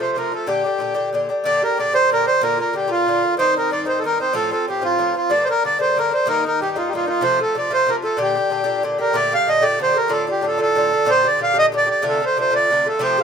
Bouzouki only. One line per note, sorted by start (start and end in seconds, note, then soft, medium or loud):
0.00 0.15 C3 soft
0.00 0.16 F3 soft
0.00 0.16 A3 medium
0.00 0.16 F4 medium
0.16 0.31 C3 medium
0.16 0.32 F3 medium
0.16 0.32 A3 medium
0.16 0.30 F4 medium
0.32 0.47 F3 soft
0.32 0.47 A3 soft
0.32 0.47 F4 soft
0.47 0.65 A#2 medium
0.47 0.65 D3 medium
0.47 0.65 D4 medium
0.47 0.63 G4 medium
0.64 0.79 D3 soft
0.64 0.79 D4 soft
0.64 0.80 G4 soft
0.78 0.94 A#2 medium
0.78 0.94 D3 medium
0.78 0.94 D4 medium
0.78 0.93 G4 medium
0.94 1.11 A#2 medium
0.94 1.13 D3 medium
0.94 1.13 D4 medium
0.94 1.13 G4 medium
1.13 1.28 A#2 medium
1.13 1.29 D3 medium
1.13 1.29 D4 medium
1.13 1.28 G4 medium
1.29 1.44 D3 soft
1.29 1.44 D4 soft
1.29 1.44 G4 soft
1.44 1.62 A#2 medium
1.44 1.62 D3 medium
1.44 1.62 D4 medium
1.44 1.61 G4 medium
1.62 1.78 D3 soft
1.62 1.78 D4 soft
1.62 1.77 G4 soft
1.77 1.92 A#2 medium
1.77 1.93 D3 soft
1.77 1.92 D4 medium
1.77 1.92 G4 medium
1.93 2.09 A#2 soft
1.93 2.10 D3 medium
1.93 2.11 D4 medium
1.93 2.10 G4 medium
2.10 2.25 A#2 medium
2.10 2.26 D3 medium
2.10 2.25 D4 medium
2.10 2.24 G4 medium
2.25 2.40 D3 soft
2.25 2.41 D4 soft
2.25 2.40 G4 soft
2.41 2.59 A#2 medium
2.41 2.59 D3 medium
2.41 2.58 A#3 medium
2.41 2.56 F4 medium
2.57 2.73 D3 soft
2.57 2.73 A#3 soft
2.57 2.73 F4 soft
2.73 2.88 A#2 medium
2.73 2.87 D3 medium
2.73 2.86 A#3 medium
2.73 2.86 F4 medium
2.88 3.05 A#2 soft
2.88 3.06 D3 medium
2.88 3.06 A#3 medium
2.88 3.06 F4 medium
3.06 3.21 A#2 medium
3.06 3.22 D3 medium
3.06 3.23 A#3 medium
3.06 3.21 F4 medium
3.23 3.38 D3 soft
3.23 3.38 A#3 soft
3.23 3.37 F4 soft
3.37 3.55 G2 medium
3.37 3.56 D#3 medium
3.37 3.56 C4 medium
3.37 3.55 D#4 medium
3.56 3.70 D#3 soft
3.56 3.71 C4 soft
3.56 3.71 D#4 soft
3.70 3.85 G2 medium
3.70 3.85 D#3 medium
3.70 3.85 C4 medium
3.70 3.84 D#4 medium
3.85 4.03 G2 soft
3.85 4.03 D#3 medium
3.85 4.04 C4 medium
3.85 4.03 D#4 medium
4.04 4.18 G2 medium
4.04 4.19 D#3 medium
4.04 4.19 C4 medium
4.04 4.18 D#4 medium
4.20 4.33 D#3 soft
4.20 4.33 C4 soft
4.20 4.34 D#4 soft
4.33 4.51 A2 medium
4.33 4.52 F3 medium
4.33 4.51 C4 medium
4.33 4.50 F4 loud
4.51 4.67 F3 soft
4.51 4.67 C4 soft
4.51 4.66 F4 medium
4.68 4.82 A2 soft
4.68 4.81 F3 medium
4.68 4.80 C4 soft
4.68 4.80 F4 soft
4.81 4.97 A2 soft
4.81 4.98 F3 medium
4.81 4.98 C4 medium
4.81 4.99 F4 medium
4.98 5.14 A2 medium
4.98 5.14 F3 medium
4.98 5.14 C4 medium
4.98 5.13 F4 medium
5.14 5.30 F3 soft
5.14 5.30 C4 soft
5.14 5.29 F4 soft
5.30 5.48 G2 medium
5.30 5.48 D3 medium
5.30 5.48 A#3 medium
5.30 5.46 D4 medium
5.47 5.64 D3 soft
5.47 5.63 A#3 soft
5.47 5.63 D4 medium
5.63 5.78 G2 soft
5.63 5.79 D3 medium
5.63 5.78 A#3 medium
5.63 5.77 D4 medium
5.79 5.95 G2 soft
5.79 5.96 D3 medium
5.79 5.96 A#3 medium
5.79 5.96 D4 medium
5.96 6.11 G2 soft
5.96 6.11 D3 medium
5.96 6.11 A#3 medium
5.96 6.10 D4 medium
6.11 6.26 D3 soft
6.11 6.26 A#3 soft
6.11 6.26 D4 soft
6.26 6.44 G2 medium
6.26 6.44 D#3 medium
6.26 6.44 A#3 medium
6.26 6.43 D#4 medium
6.44 6.61 D#3 soft
6.44 6.60 A#3 soft
6.44 6.59 D#4 medium
6.61 6.75 G2 soft
6.61 6.76 D#3 medium
6.61 6.75 A#3 medium
6.61 6.75 D#4 medium
6.76 6.92 G2 soft
6.76 6.93 D#3 medium
6.76 6.93 A#3 medium
6.76 6.93 D#4 medium
6.93 7.08 G2 medium
6.93 7.07 D#3 medium
6.93 7.06 A#3 medium
6.93 7.05 D#4 medium
7.06 7.21 D#3 soft
7.06 7.22 A#3 soft
7.06 7.22 D#4 soft
7.21 7.40 C3 medium
7.21 7.40 F3 medium
7.21 7.39 A3 medium
7.21 7.37 F4 medium
7.39 7.54 F3 soft
7.39 7.55 A3 soft
7.39 7.55 F4 soft
7.55 7.70 C3 medium
7.55 7.70 F3 soft
7.55 7.70 A3 medium
7.55 7.69 F4 medium
7.71 7.85 C3 soft
7.71 7.87 F3 medium
7.71 7.87 A3 medium
7.71 7.88 F4 medium
7.86 8.03 C3 medium
7.86 8.04 F3 medium
7.86 8.02 A3 medium
7.86 8.01 F4 medium
8.02 8.18 F3 soft
8.02 8.18 A3 soft
8.02 8.18 F4 soft
8.17 8.36 A#2 medium
8.17 8.36 D3 medium
8.17 8.36 D4 medium
8.17 8.34 G4 medium
8.35 8.50 D3 soft
8.35 8.51 D4 medium
8.35 8.51 G4 medium
8.50 8.65 A#2 soft
8.50 8.64 D3 medium
8.50 8.63 D4 medium
8.50 8.63 G4 medium
8.64 8.82 A#2 medium
8.64 8.83 D3 medium
8.64 8.83 D4 medium
8.64 8.83 G4 medium
8.83 8.99 A#2 medium
8.83 8.99 D3 medium
8.83 8.98 D4 medium
8.83 8.97 G4 medium
8.98 9.13 D3 soft
8.98 9.15 D4 soft
8.98 9.14 G4 medium
9.13 9.32 A#2 medium
9.13 9.33 D3 medium
9.13 9.32 A3 medium
9.13 9.31 G4 medium
9.32 9.46 D3 soft
9.32 9.47 A3 soft
9.32 9.48 G4 medium
9.47 9.62 A#2 medium
9.47 9.61 D3 medium
9.47 9.61 A3 medium
9.47 9.60 G4 medium
9.62 9.78 A#2 soft
9.62 9.78 D3 medium
9.62 9.79 A3 medium
9.62 9.80 G4 medium
9.79 9.95 A#2 medium
9.79 9.94 D3 medium
9.79 9.93 A3 medium
9.79 9.92 G4 medium
9.93 10.08 D3 soft
9.93 10.09 A3 soft
9.93 10.09 G4 soft
10.08 10.28 A2 medium
10.08 10.28 D3 medium
10.08 10.27 D4 medium
10.08 10.26 F4 medium
10.27 10.41 D3 soft
10.27 10.41 D4 soft
10.27 10.43 F4 medium
10.41 10.58 A2 medium
10.41 10.58 D3 medium
10.41 10.58 D4 medium
10.41 10.57 F4 medium
10.58 10.74 A2 medium
10.58 10.75 D3 medium
10.58 10.76 D4 medium
10.58 10.77 F4 medium
10.75 10.91 A2 medium
10.75 10.92 D3 medium
10.75 10.92 D4 medium
10.75 10.91 F4 medium
10.92 11.05 D3 soft
10.92 11.05 D4 medium
10.92 11.07 F4 soft
11.05 11.24 A#2 medium
11.05 11.25 D3 medium
11.05 11.23 D4 medium
11.05 11.22 G4 medium
11.23 11.38 D3 soft
11.23 11.38 D4 soft
11.23 11.39 G4 soft
11.38 11.54 A#2 medium
11.38 11.54 D3 medium
11.38 11.53 D4 medium
11.38 11.52 G4 medium
11.53 11.71 A#2 medium
11.53 11.72 D3 medium
11.53 11.73 D4 medium
11.53 11.72 G4 medium
11.72 11.88 A#2 medium
11.72 11.87 D3 medium
11.72 11.86 D4 medium
11.72 11.85 G4 medium
11.86 12.02 D3 soft
11.86 12.03 D4 soft
11.86 12.02 G4 medium
12.02 12.21 C3 medium
12.02 12.21 D3 medium
12.02 12.21 A3 medium
12.02 12.19 F4 loud
12.20 12.37 D3 soft
12.20 12.37 A3 medium
12.20 12.36 F4 soft
12.37 12.52 C3 medium
12.37 12.51 D3 medium
12.37 12.51 A3 medium
12.37 12.49 F4 medium
12.50 12.69 C3 soft
12.50 12.70 D3 medium
12.50 12.70 A3 medium
12.50 12.69 F4 medium
12.70 12.85 C3 medium
12.70 12.85 D3 medium
12.70 12.85 A3 medium
12.70 12.83 F4 medium
12.84 12.99 D3 soft
12.84 12.99 A3 soft
12.84 13.00 F4 soft
12.99 13.18 C3 medium
12.99 13.18 F3 medium
12.99 13.17 A3 medium
12.99 13.16 G4 loud
13.17 13.23 F3 soft
13.17 13.23 A3 medium
13.17 13.23 G4 medium